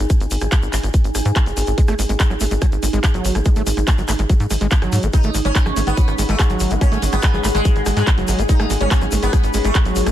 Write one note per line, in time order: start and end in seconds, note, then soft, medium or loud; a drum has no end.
0.00 10.12 D#4 medium
0.00 10.12 G#4 medium
0.00 5.19 G#5 medium
0.10 kick loud
0.10 cross-stick soft
0.10 closed hi-hat medium
0.10 shaker medium
0.20 0.27 G#1 medium
0.20 closed hi-hat soft
0.20 shaker soft
0.31 0.38 G#1 loud
0.31 open hi-hat loud
0.31 shaker medium
0.41 0.48 G#1 medium
0.41 cross-stick medium
0.41 closed hi-hat medium
0.41 shaker soft
0.52 kick loud
0.52 clap loud
0.52 closed hi-hat medium
0.52 shaker medium
0.62 0.69 G#1 medium
0.62 shaker soft
0.73 0.79 G#1 loud
0.73 clap medium
0.73 open hi-hat loud
0.73 shaker medium
0.83 0.90 G#1 medium
0.83 cross-stick soft
0.83 closed hi-hat medium
0.83 shaker soft
0.94 kick loud
0.94 closed hi-hat medium
0.94 shaker medium
1.04 1.11 G#1 medium
1.04 closed hi-hat soft
1.04 shaker soft
1.15 1.21 G#1 medium
1.15 cross-stick medium
1.15 open hi-hat loud
1.15 shaker loud
1.25 1.32 G#2 medium
1.25 closed hi-hat medium
1.25 shaker soft
1.36 kick loud
1.36 clap loud
1.36 closed hi-hat medium
1.36 shaker soft
1.46 1.53 F#1 medium
1.46 closed hi-hat soft
1.46 shaker soft
1.57 1.63 G#1 loud
1.57 cross-stick soft
1.57 open hi-hat loud
1.57 shaker loud
1.67 1.74 G#1 medium
1.67 closed hi-hat medium
1.67 shaker soft
1.78 1.82 G#3 medium
1.78 kick loud
1.78 closed hi-hat medium
1.78 shaker soft
1.88 1.95 G#1 medium
1.88 1.94 A3 loud
1.88 cross-stick medium
1.88 closed hi-hat soft
1.88 shaker soft
1.99 2.05 G#1 loud
1.99 2.01 G#3 medium
1.99 open hi-hat loud
1.99 shaker medium
2.09 2.16 G#1 loud
2.09 2.12 G#3 medium
2.09 closed hi-hat soft
2.09 shaker soft
2.20 2.22 G#3 medium
2.20 kick loud
2.20 clap loud
2.20 closed hi-hat medium
2.20 shaker medium
2.30 2.37 G#1 medium
2.30 2.34 F#3 medium
2.30 cross-stick soft
2.30 shaker soft
2.40 2.47 G#1 loud
2.40 2.45 A3 medium
2.40 open hi-hat loud
2.40 shaker medium
2.51 2.58 G#1 loud
2.51 2.54 G#3 medium
2.51 closed hi-hat medium
2.51 shaker soft
2.62 2.66 F#3 loud
2.62 kick loud
2.62 cross-stick medium
2.62 closed hi-hat medium
2.62 shaker medium
2.72 2.79 G#1 medium
2.72 closed hi-hat soft
2.72 shaker soft
2.83 2.89 G#1 loud
2.83 2.85 G#3 medium
2.83 open hi-hat loud
2.83 shaker loud
2.93 3.00 G#1 medium
2.93 2.99 G#3 loud
2.93 closed hi-hat medium
2.93 shaker soft
3.04 3.06 G#3 medium
3.04 kick loud
3.04 cross-stick soft
3.04 clap loud
3.04 closed hi-hat medium
3.04 shaker soft
3.14 3.21 G#1 medium
3.14 3.37 F#3 medium
3.14 closed hi-hat soft
3.14 shaker soft
3.25 3.31 G#1 loud
3.25 open hi-hat loud
3.25 shaker medium
3.35 3.42 G#1 medium
3.35 3.39 B3 medium
3.35 cross-stick medium
3.35 closed hi-hat medium
3.35 shaker soft
3.45 3.50 G#3 medium
3.45 kick loud
3.45 closed hi-hat medium
3.45 shaker soft
3.56 3.63 G#1 medium
3.56 3.62 A3 loud
3.56 closed hi-hat soft
3.56 shaker soft
3.67 3.73 G#1 loud
3.67 3.69 G#3 medium
3.67 open hi-hat loud
3.67 shaker loud
3.77 3.84 G#1 medium
3.77 3.80 G#3 medium
3.77 cross-stick soft
3.77 closed hi-hat soft
3.77 shaker soft
3.87 3.90 G#3 medium
3.87 kick loud
3.87 clap loud
3.87 closed hi-hat medium
3.87 shaker medium
3.98 4.05 G#1 medium
3.98 4.02 F#3 medium
3.98 shaker soft
4.08 4.15 G#1 loud
4.08 4.13 A3 medium
4.08 cross-stick medium
4.08 clap medium
4.08 open hi-hat loud
4.08 shaker loud
4.19 4.26 G#1 medium
4.19 4.22 G#3 medium
4.19 closed hi-hat soft
4.19 shaker soft
4.29 4.34 F#3 loud
4.29 kick loud
4.29 closed hi-hat medium
4.29 shaker medium
4.40 4.47 G#2 medium
4.40 closed hi-hat soft
4.40 shaker soft
4.50 4.57 G#1 medium
4.50 4.53 G#3 medium
4.50 cross-stick soft
4.50 open hi-hat loud
4.50 shaker loud
4.61 4.68 G#1 medium
4.61 4.67 G#3 loud
4.61 closed hi-hat medium
4.61 shaker soft
4.71 4.74 G#3 medium
4.71 kick loud
4.71 clap loud
4.71 closed hi-hat medium
4.71 shaker soft
4.82 4.89 G#1 medium
4.82 5.05 F#3 medium
4.82 cross-stick medium
4.82 closed hi-hat soft
4.82 shaker soft
4.92 4.99 G#2 loud
4.92 open hi-hat loud
4.92 shaker medium
5.03 5.10 G#1 medium
5.03 5.07 B3 medium
5.03 10.12 F#5 medium
5.03 closed hi-hat soft
5.03 shaker soft
5.13 10.12 G#3 medium
5.13 5.18 G#3 medium
5.13 5.33 D#4 loud
5.13 10.12 G#4 medium
5.13 kick loud
5.13 closed hi-hat medium
5.13 shaker medium
5.23 5.30 G#1 medium
5.23 5.30 A3 loud
5.23 closed hi-hat soft
5.23 shaker soft
5.34 5.41 G#1 loud
5.34 5.37 G#3 medium
5.34 cross-stick soft
5.34 open hi-hat loud
5.34 shaker loud
5.45 5.51 G#1 medium
5.45 5.47 G#3 medium
5.45 5.71 C#4 medium
5.45 closed hi-hat soft
5.45 shaker soft
5.55 5.58 G#3 medium
5.55 kick loud
5.55 clap loud
5.55 closed hi-hat medium
5.55 shaker medium
5.66 5.72 G#1 medium
5.66 5.70 F#3 medium
5.66 cross-stick medium
5.66 shaker soft
5.76 5.83 G#1 loud
5.76 5.81 A3 medium
5.76 open hi-hat loud
5.76 shaker loud
5.87 5.93 G#1 medium
5.87 5.89 G#3 medium
5.87 6.13 B3 medium
5.87 closed hi-hat medium
5.87 shaker soft
5.97 6.02 F#3 loud
5.97 kick loud
5.97 closed hi-hat medium
5.97 shaker medium
6.08 6.14 G#1 medium
6.08 cross-stick soft
6.08 closed hi-hat soft
6.08 shaker soft
6.18 6.25 G#1 loud
6.18 6.22 G#3 medium
6.18 open hi-hat loud
6.18 shaker medium
6.29 6.35 G#1 medium
6.29 6.35 G#3 loud
6.29 6.42 A3 medium
6.29 closed hi-hat medium
6.29 shaker soft
6.39 6.42 G#3 medium
6.39 kick loud
6.39 cross-stick medium
6.39 clap loud
6.39 closed hi-hat medium
6.39 shaker medium
6.50 6.56 G#1 medium
6.50 6.72 F#3 medium
6.50 closed hi-hat soft
6.50 shaker soft
6.60 6.67 G#1 loud
6.60 open hi-hat loud
6.60 shaker medium
6.70 6.77 G#1 medium
6.70 6.75 B3 medium
6.70 closed hi-hat soft
6.70 shaker soft
6.81 6.85 G#3 medium
6.81 7.01 C#4 loud
6.81 kick loud
6.81 cross-stick soft
6.81 closed hi-hat medium
6.81 shaker medium
6.92 6.98 G#1 medium
6.92 6.98 A3 loud
6.92 closed hi-hat soft
6.92 shaker soft
7.02 7.09 G#1 loud
7.02 7.05 G#3 medium
7.02 open hi-hat loud
7.02 shaker loud
7.12 7.19 G#1 medium
7.12 7.15 G#3 medium
7.12 7.39 B3 medium
7.12 cross-stick medium
7.12 closed hi-hat soft
7.12 shaker soft
7.22 7.26 G#3 medium
7.22 kick loud
7.22 clap loud
7.22 closed hi-hat medium
7.22 shaker medium
7.34 7.40 G#1 medium
7.34 7.38 F#3 medium
7.34 shaker soft
7.44 7.51 G#1 loud
7.44 7.48 A3 medium
7.44 clap medium
7.44 open hi-hat loud
7.44 shaker medium
7.55 7.61 G#1 medium
7.55 7.81 G#3 medium
7.55 7.57 G#3 medium
7.55 cross-stick soft
7.55 closed hi-hat medium
7.55 shaker soft
7.65 7.69 F#3 loud
7.65 kick loud
7.65 closed hi-hat medium
7.65 shaker soft
7.76 7.82 G#1 medium
7.76 closed hi-hat soft
7.76 shaker soft
7.86 7.93 G#1 medium
7.86 7.90 G#3 medium
7.86 cross-stick medium
7.86 open hi-hat loud
7.86 shaker medium
7.97 8.03 G#2 medium
7.97 8.03 G#3 loud
7.97 8.10 G#3 medium
7.97 closed hi-hat medium
7.97 shaker soft
8.07 8.10 G#3 medium
8.07 kick loud
8.07 clap loud
8.07 closed hi-hat medium
8.07 shaker soft
8.18 8.24 F#1 medium
8.18 8.40 F#3 medium
8.18 closed hi-hat soft
8.18 shaker soft
8.28 8.35 G#1 loud
8.28 cross-stick soft
8.28 open hi-hat loud
8.28 shaker medium
8.39 8.45 G#1 medium
8.39 8.43 B3 medium
8.39 closed hi-hat medium
8.39 shaker soft
8.49 8.53 G#3 medium
8.49 8.69 D#4 loud
8.49 kick loud
8.49 closed hi-hat medium
8.49 shaker medium
8.60 8.66 G#1 medium
8.60 8.66 A3 loud
8.60 cross-stick medium
8.60 closed hi-hat soft
8.60 shaker soft
8.70 8.77 G#1 loud
8.70 8.73 G#3 medium
8.70 open hi-hat loud
8.70 shaker medium
8.81 8.87 G#1 medium
8.81 8.83 G#3 medium
8.81 9.07 C#4 medium
8.81 closed hi-hat medium
8.81 shaker soft
8.91 8.94 G#3 medium
8.91 kick loud
8.91 clap loud
8.91 closed hi-hat medium
8.91 shaker medium
9.01 9.08 G#1 medium
9.01 9.06 F#3 medium
9.01 cross-stick soft
9.01 shaker soft
9.12 9.19 G#1 loud
9.12 9.16 A3 medium
9.12 open hi-hat loud
9.12 shaker medium
9.23 9.29 G#1 medium
9.23 9.25 G#3 medium
9.23 9.49 B3 medium
9.23 closed hi-hat medium
9.23 shaker soft
9.33 9.37 F#3 loud
9.33 kick loud
9.33 cross-stick medium
9.33 closed hi-hat medium
9.33 shaker soft
9.44 9.50 G#1 medium
9.44 closed hi-hat soft
9.44 shaker soft
9.54 9.61 G#1 medium
9.54 9.58 G#3 medium
9.54 open hi-hat loud
9.54 shaker medium
9.64 9.71 G#1 loud
9.64 9.71 G#3 loud
9.64 9.78 A3 medium
9.64 closed hi-hat medium
9.64 shaker soft
9.75 9.77 G#3 medium
9.75 kick loud
9.75 cross-stick soft
9.75 clap loud
9.75 closed hi-hat medium
9.75 shaker medium
9.85 9.92 G#1 medium
9.85 10.08 F#3 medium
9.85 closed hi-hat soft
9.85 shaker soft
9.96 10.03 G#1 loud
9.96 open hi-hat loud
9.96 shaker medium
10.06 10.12 G#1 medium
10.06 10.11 B3 medium
10.06 cross-stick medium
10.06 closed hi-hat medium
10.06 shaker soft